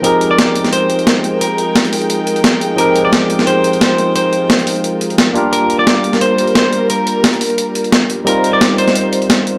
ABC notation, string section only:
X:1
M:4/4
L:1/8
Q:"Swing 16ths" 1/4=175
K:Fdor
V:1 name="String section"
[A,EFBg]8- | [A,EFBg]8- | [A,EFBg]8- | [A,EFBg]6- [A,EFBg] [G,B]- |
[G,B]8- | [G,B]8 | [G,Ec]8 |]